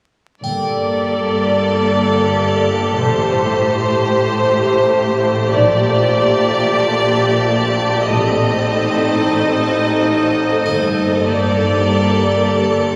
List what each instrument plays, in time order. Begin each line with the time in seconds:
0.43 double bass section G1, synth drone G1, cello section G2, viola section A#3 A4, ambient pad G4 A4 A5, violin section D5, celesta G5, triangle
2.98 double bass section A1, synth drone A1, cello section A2, viola section A3 G4, ambient pad C5, violin section C5
3.32 celesta C5
5.54 double bass section A#1, synth drone A#1, cello section A#2, celesta D#4 D5, ambient pad G4 D5 A5, violin section D5
8.09 double bass section A1, synth drone A1, cello section A2, viola section C4 A4, ambient pad D#4 C5, violin section D#5
10.65 synth drone G1, double bass section G1, cello section G2, viola section A#3, ambient pad G4 A4 A5, triangle
11.29 violin section D5